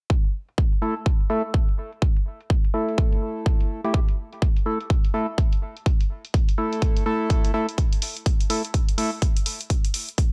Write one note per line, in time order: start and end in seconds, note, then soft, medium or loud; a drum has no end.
0.10 kick loud
0.24 closed hi-hat soft
0.49 closed hi-hat soft
0.58 kick loud
0.72 closed hi-hat medium
0.82 0.95 A3 medium
0.82 0.95 E4 medium
0.82 0.95 A4 medium
0.97 closed hi-hat soft
1.06 kick loud
1.20 closed hi-hat medium
1.30 1.43 A3 medium
1.30 1.43 E4 medium
1.30 1.43 A4 medium
1.54 kick loud
1.54 closed hi-hat medium
1.68 closed hi-hat medium
1.93 closed hi-hat soft
2.02 kick loud
2.17 closed hi-hat soft
2.41 closed hi-hat soft
2.50 kick loud
2.50 closed hi-hat medium
2.65 closed hi-hat medium
2.74 3.81 A3 medium
2.74 3.81 E4 medium
2.74 3.81 A4 medium
2.89 closed hi-hat soft
2.98 kick loud
2.98 closed hi-hat medium
3.12 closed hi-hat soft
3.46 kick loud
3.46 closed hi-hat medium
3.60 closed hi-hat medium
3.84 4.00 A3 medium
3.84 4.00 E4 medium
3.84 4.00 G4 medium
3.84 closed hi-hat soft
3.94 kick loud
3.94 closed hi-hat medium
4.09 closed hi-hat soft
4.33 closed hi-hat soft
4.42 kick loud
4.42 closed hi-hat medium
4.57 closed hi-hat soft
4.66 4.79 A3 medium
4.66 4.79 E4 medium
4.66 4.79 A4 medium
4.81 closed hi-hat soft
4.90 kick loud
4.90 closed hi-hat medium
5.05 closed hi-hat soft
5.14 5.27 A3 medium
5.14 5.27 E4 medium
5.14 5.27 A4 medium
5.38 kick loud
5.38 closed hi-hat medium
5.53 closed hi-hat medium
5.77 closed hi-hat soft
5.86 kick loud
5.86 closed hi-hat medium
6.01 closed hi-hat soft
6.25 closed hi-hat soft
6.34 kick loud
6.34 closed hi-hat medium
6.49 closed hi-hat soft
6.58 7.04 A3 medium
6.58 7.04 E4 medium
6.58 7.04 A4 medium
6.73 closed hi-hat soft
6.82 kick loud
6.82 closed hi-hat medium
6.97 closed hi-hat soft
7.06 7.52 A3 medium
7.06 7.52 E4 medium
7.06 7.52 A4 loud
7.30 kick loud
7.30 closed hi-hat medium
7.45 closed hi-hat medium
7.54 7.67 A3 medium
7.54 7.67 E4 medium
7.54 7.67 A4 medium
7.69 closed hi-hat soft
7.78 kick loud
7.78 closed hi-hat medium
7.93 closed hi-hat soft
8.02 open hi-hat loud
8.17 closed hi-hat soft
8.26 kick loud
8.26 closed hi-hat medium
8.41 closed hi-hat soft
8.50 8.63 A3 medium
8.50 8.63 E4 medium
8.50 8.63 A4 medium
8.50 open hi-hat loud
8.65 closed hi-hat soft
8.74 kick loud
8.74 closed hi-hat medium
8.89 closed hi-hat soft
8.98 9.11 A3 medium
8.98 9.11 E4 medium
8.98 9.11 A4 loud
8.98 open hi-hat loud
9.22 kick loud
9.22 closed hi-hat medium
9.37 closed hi-hat medium
9.46 open hi-hat loud
9.61 closed hi-hat soft
9.70 kick loud
9.70 closed hi-hat medium
9.85 closed hi-hat soft
9.94 open hi-hat loud
10.09 closed hi-hat soft
10.18 kick loud
10.18 closed hi-hat medium